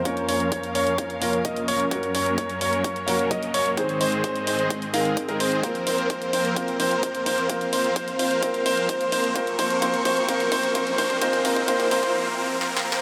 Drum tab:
HH |x--x--o--x--x--x--o--x--x--x--o--x--x--x--o--x--|x--x--o--x--x--x--o--x--x--x--o--x--x--x--o--x--|x--x--o--x--x--x--o--x--x--x--o--x--x--x--o--x--|x--x--o--x--x--x--o--x--x--x--o--x--x--x--o--x--|
SD |------------------------------------------------|------------------------------------------------|------------------------------------------------|------------------------------------------------|
BD |o-----------o-----------o-----------o-----------|o-----------o-----------o-----------o-----------|o-----------o-----------o-----------o-----------|o-----------o-----------o-----------o-----------|

HH |x--x--o--x--x--x--o--x--x--x--o--x--x--x--o--x--|x--x--o--x--x--x--o--x--x--x--o--x--x--x--o--x--|x--x--o--x--x--x--o--x--------------------------|
SD |------------------------------------------------|------------------------------------------------|------------------------------------o---o---o---|
BD |o-----------o-----------o-----------o-----------|o-----o-----o-----o-----o-----o-----o-----o-----|o--o--o--o--o--o--o--o--------------------------|